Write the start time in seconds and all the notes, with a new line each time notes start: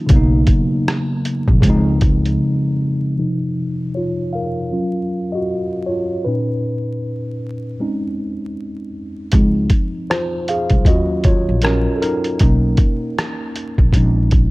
Already playing: D#3 F#3 A#3 C#4 D#4 F4
0.07 B1 C#3 F#3, kick, closed hi-hat
0.11 A#3 B3
0.16 D#4
0.47 kick, closed hi-hat
0.88 cross-stick, closed hi-hat
1.25 closed hi-hat
1.48 A#1, kick
1.60 C#2 C#3 F3, kick, closed hi-hat
1.65 G#3 C4
1.70 D#4
2.01 kick, closed hi-hat
2.25 closed hi-hat
3.18 C3 F3 D#4
3.95 F4 C#5
4.33 A#4 F5
4.72 F#3 C#4 F4
5.32 F#4 D#5
5.86 F4 C#5
6.25 A#2 C#4 D#4 B4
7.80 G#3 C4 C#4 D#4
9.32 C#2 F3 C4 D#4, kick, closed hi-hat
9.70 kick, closed hi-hat
10.10 F4 C5, cross-stick, closed hi-hat
10.48 G#4 F5, closed hi-hat
10.70 C2, kick, closed hi-hat
10.85 D#2 F#3 C#4 F4 F#4 D#5, kick, closed hi-hat
11.24 F4 C#5, kick, closed hi-hat
11.49 A#1
11.62 C#4 A#4, cross-stick, closed hi-hat
11.96 A4
12.02 D#4 A#4, closed hi-hat
12.24 closed hi-hat
12.39 B1 A#3 C#4 D#4, kick, closed hi-hat
12.77 kick, closed hi-hat
13.18 cross-stick, closed hi-hat
13.56 closed hi-hat
13.78 A#1, kick
13.93 A#1 G#3 C4 C#4 D#4, kick, closed hi-hat
14.31 kick, closed hi-hat